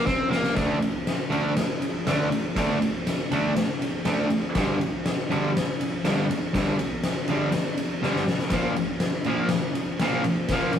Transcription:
0.06 0.30 C4 loud
0.06 kick loud
0.06 snare medium
0.31 0.55 A#3 medium
0.31 snare loud
0.44 snare medium
0.55 0.76 D3 medium
0.55 0.76 A3 medium
0.55 0.77 D4 loud
0.55 kick loud
0.55 snare loud
0.55 ride medium
0.82 ride medium
1.07 snare loud
1.07 ride medium
1.30 1.51 D3 medium
1.30 1.52 A3 loud
1.30 1.52 D4 loud
1.30 ride medium
1.57 snare loud
1.57 ride loud
1.82 ride medium
2.06 2.26 D3 medium
2.06 2.27 A3 medium
2.06 2.27 D4 loud
2.06 snare loud
2.06 ride medium
2.32 ride medium
2.56 2.76 D3 medium
2.56 2.76 A3 medium
2.56 2.77 D4 loud
2.56 kick loud
2.56 snare loud
2.56 ride loud
2.82 ride medium
3.07 snare loud
3.07 ride loud
3.31 3.51 D3 medium
3.31 3.52 A3 medium
3.31 3.52 D4 loud
3.31 ride medium
3.56 snare loud
3.56 ride loud
3.82 ride medium
4.05 4.26 D3 medium
4.05 4.26 A3 medium
4.05 4.26 D4 medium
4.05 snare loud
4.05 ride loud
4.30 ride medium
4.55 4.76 G2 medium
4.55 4.76 D3 loud
4.55 4.77 G3 medium
4.55 kick loud
4.55 snare loud
4.55 ride medium
4.81 ride medium
5.06 snare loud
5.06 ride medium
5.30 5.50 G2 medium
5.30 5.51 D3 medium
5.30 5.51 G3 loud
5.30 ride medium
5.57 snare loud
5.57 ride medium
5.81 ride medium
6.04 6.25 G2 medium
6.04 6.25 D3 medium
6.04 6.25 G3 loud
6.04 snare loud
6.04 ride medium
6.31 ride medium
6.54 6.74 G2 medium
6.54 6.75 D3 loud
6.54 6.75 G3 loud
6.54 kick loud
6.54 snare loud
6.54 ride medium
6.79 ride medium
7.04 snare loud
7.04 ride loud
7.28 7.49 G2 medium
7.28 7.49 D3 medium
7.28 7.50 G3 loud
7.28 ride medium
7.52 snare loud
7.52 ride loud
7.78 ride medium
8.02 8.23 G2 medium
8.02 8.23 D3 loud
8.02 8.24 G3 loud
8.02 snare medium
8.16 snare medium
8.28 snare medium
8.39 snare medium
8.50 8.72 A#2 medium
8.50 8.73 F3 medium
8.50 8.73 A#3 loud
8.50 kick loud
8.50 snare loud
8.50 ride medium
8.76 ride medium
9.00 snare loud
9.00 ride medium
9.24 9.46 A#2 medium
9.24 9.47 F3 loud
9.24 9.47 A#3 medium
9.24 ride medium
9.49 snare loud
9.49 ride medium
9.75 ride medium
10.00 10.21 A#2 medium
10.00 10.21 F3 medium
10.00 10.21 A#3 loud
10.00 snare loud
10.00 ride medium
10.24 ride medium
10.49 10.71 A#2 medium
10.49 10.71 F3 medium
10.49 kick loud
10.49 snare loud
10.49 ride medium
10.53 10.71 A#3 loud
10.73 ride medium

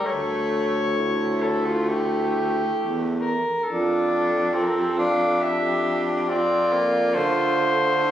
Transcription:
0.04 2.62 D2 medium
0.04 0.80 A3 medium
0.04 0.94 A4 medium
0.04 1.44 C#5 loud
0.97 3.34 A3 medium
0.97 1.87 E4 medium
1.42 1.68 A4 medium
1.67 1.91 F4 medium
1.89 3.35 E4 medium
1.89 3.04 G4 medium
2.79 3.37 E2 medium
3.21 3.65 A#4 medium
3.64 7.18 F2 medium
3.64 4.56 D4 medium
3.64 4.55 F4 medium
3.64 4.64 A4 medium
4.54 4.98 C4 medium
4.54 5.42 A4 medium
4.63 4.74 A#4 medium
4.73 4.82 A4 medium
4.80 4.91 G4 medium
4.89 5.00 A4 medium
4.98 5.42 D4 medium
4.98 5.40 F5 medium
5.41 6.31 D4 medium
5.41 6.30 G4 medium
5.41 6.01 E5 medium
6.29 6.74 C4 medium
6.29 8.06 F4 medium
6.29 7.16 D5 medium
6.73 7.18 A#3 medium
7.14 8.11 D3 medium
7.14 7.60 A3 medium
7.14 8.11 C5 loud
7.61 8.11 A3 medium
8.04 8.11 E4 medium

